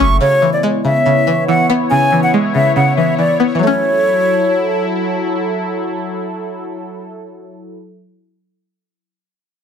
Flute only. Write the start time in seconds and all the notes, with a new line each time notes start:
0.00 C#6
0.21 C#5
0.53 D5
0.84 E5
1.49 F#5
1.91 G#5
2.23 F#5
2.55 E5
2.76 F#5
2.97 E5
3.18 D5
3.61 C#5